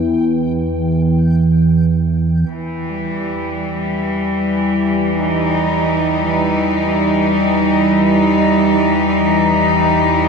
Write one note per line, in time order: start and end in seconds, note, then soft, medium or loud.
0.00 2.49 E2 medium
0.00 2.50 E3 medium
0.00 2.50 G5 medium
2.50 10.28 E2 medium
2.50 10.28 E3 medium
2.89 10.28 G3 medium
5.14 10.28 D#4 medium